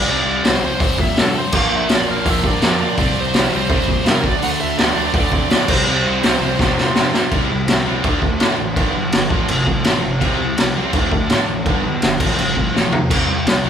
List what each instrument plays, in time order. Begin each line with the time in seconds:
Already playing: distorted electric guitar C3 G3 C4 E4, lead electric guitar D5
0.08 picked electric bass C2, distorted electric guitar C3 G3 C4
0.26 picked electric bass C2
0.44 picked electric bass C2, distorted electric guitar C3 G3 C4, lead electric guitar C5, snare, open hi-hat
0.61 picked electric bass C2, distorted electric guitar C3 G3 C4 E4
0.65 lead electric guitar C5
0.80 picked electric bass C2, distorted electric guitar C3 G3 C4, kick, open hi-hat
0.98 picked electric bass A#2, lead electric guitar E5, kick
1.17 picked electric bass G2, distorted electric guitar C3 G3 C4, lead electric guitar A4, snare, open hi-hat
1.36 distorted electric guitar C3 G3 C4, lead electric guitar C5
1.52 picked electric bass A#1, distorted electric guitar A#2 D3 F3 A#3 F4, lead electric guitar F5, kick, crash
1.71 picked electric bass A#1
1.76 lead electric guitar E5
1.88 picked electric bass A#1, distorted electric guitar A#2 F3 A#3, snare, open hi-hat
1.95 lead electric guitar D5
2.07 picked electric bass A#1, distorted electric guitar A#2 F3 A#3
2.11 lead electric guitar F5
2.26 picked electric bass A#1, distorted electric guitar A#2 D3 F3 A#3 F4, kick, open hi-hat
2.30 lead electric guitar E5
2.44 picked electric bass G2, lead electric guitar D5, kick
2.62 picked electric bass F2, distorted electric guitar A#2 F3 A#3, snare, open hi-hat
2.80 distorted electric guitar A#2 F3 A#3
2.85 lead electric guitar D5
2.97 picked electric bass C2, distorted electric guitar C3 G3 C4 E4, kick, open hi-hat
3.16 picked electric bass C2
3.20 lead electric guitar C5
3.34 picked electric bass C2, distorted electric guitar C3 G3 C4, snare, open hi-hat
3.51 picked electric bass C2, distorted electric guitar C3 G3 C4
3.56 lead electric guitar C5
3.69 picked electric bass C2, distorted electric guitar C3 G3 C4 E4, kick, open hi-hat
3.88 picked electric bass A#2, kick
4.05 picked electric bass G2, distorted electric guitar C3 G3 C4, snare, open hi-hat
4.09 lead electric guitar A#4
4.24 picked electric bass D2, distorted electric guitar D3 F#3 A3 D4, lead electric guitar D5, kick
4.42 picked electric bass D2, distorted electric guitar D3 A3 D4, lead electric guitar F#5, open hi-hat
4.59 picked electric bass D2, lead electric guitar E5
4.78 picked electric bass D2, distorted electric guitar D3 A3 D4, lead electric guitar D5, snare, open hi-hat
4.95 picked electric bass D2, distorted electric guitar D3 F#3 A3 D4
5.07 lead electric guitar D5
5.14 picked electric bass D2, distorted electric guitar D3 A3 D4, kick, open hi-hat
5.32 picked electric bass C3, kick
5.49 picked electric bass A2, distorted electric guitar D3 A3 D4, snare, open hi-hat
5.68 picked electric bass C2, distorted electric guitar C3 G3 C4 E4, lead electric guitar C5, kick, crash
5.86 picked electric bass C2, distorted electric guitar C3 G3 C4
6.05 picked electric bass C2
6.22 picked electric bass C2, distorted electric guitar C3 G3 C4, snare, open hi-hat
6.40 picked electric bass C2, distorted electric guitar C3 G3 C4 E4
6.58 picked electric bass C2, distorted electric guitar C3 G3 C4, kick, snare
6.78 picked electric bass A#2, snare
6.94 picked electric bass G2, distorted electric guitar C3 G3 C4, snare
7.12 distorted electric guitar C3 G3 C4, snare
7.31 picked electric bass C2, distorted electric guitar C3 G3 C4 E4, kick, crash
7.49 picked electric bass C2, distorted electric guitar C3 G3
7.67 picked electric bass C2, distorted electric guitar C3 G3, snare, crash
7.85 picked electric bass C2, distorted electric guitar C3 G3 C4
8.03 picked electric bass D2, distorted electric guitar D3 F3 A3 D4, kick, crash
8.20 picked electric bass D2, distorted electric guitar D3 A3, kick
8.39 picked electric bass A2, distorted electric guitar D3 A3 D4, snare, crash
8.58 picked electric bass A1, distorted electric guitar D3 A3
8.76 picked electric bass G1, distorted electric guitar G2 D3 G3 B3 D4, kick, crash
8.95 picked electric bass B1, distorted electric guitar G2 D3
9.12 picked electric bass G1, distorted electric guitar G2 D3, snare, crash
9.30 picked electric bass A1, distorted electric guitar F2 A2 C3 F3 A3 C4 F4, kick
9.48 picked electric bass G1, distorted electric guitar F2 C3, crash
9.67 picked electric bass C2, distorted electric guitar F2 C3, kick
9.84 picked electric bass A1, distorted electric guitar F2 C3 F3, snare, crash
10.02 picked electric bass G1, distorted electric guitar F2 A2 C3 F3 A3 C4 F4
10.20 picked electric bass C2, distorted electric guitar C3 G3 C4 E4, kick, crash
10.38 picked electric bass C2, distorted electric guitar C3 G3
10.57 picked electric bass C2, distorted electric guitar C3 G3, snare, crash
10.75 picked electric bass C2, distorted electric guitar C3 G3 C4
10.93 picked electric bass D2, distorted electric guitar D3 F3 A3 D4, kick, crash
11.11 picked electric bass D2, distorted electric guitar D3 A3, kick
11.30 picked electric bass A2, distorted electric guitar D3 A3 D4, snare, crash
11.49 picked electric bass A1, distorted electric guitar D3 A3
11.66 picked electric bass G1, distorted electric guitar G2 D3 G3 B3 D4, kick, crash
11.85 picked electric bass B1, distorted electric guitar G2 D3
12.02 picked electric bass G1, distorted electric guitar G2 D3, snare, crash
12.19 picked electric bass A1, distorted electric guitar F2 A2 C3 F3 A3 C4 F4, kick, crash
12.37 picked electric bass G1, distorted electric guitar F2 C3, crash
12.56 picked electric bass C2, distorted electric guitar F2 C3, kick
12.73 picked electric bass A1, distorted electric guitar F2 C3 F3, snare
12.91 picked electric bass B1, distorted electric guitar F2 A2 C3 F3 A3 C4 F4, floor tom
13.10 picked electric bass C2, distorted electric guitar C3 G3 C4 E4, kick, crash
13.27 picked electric bass C2, distorted electric guitar C3 G3
13.47 picked electric bass C2, distorted electric guitar C3 G3, snare, crash
13.63 picked electric bass C2, distorted electric guitar C3 G3 C4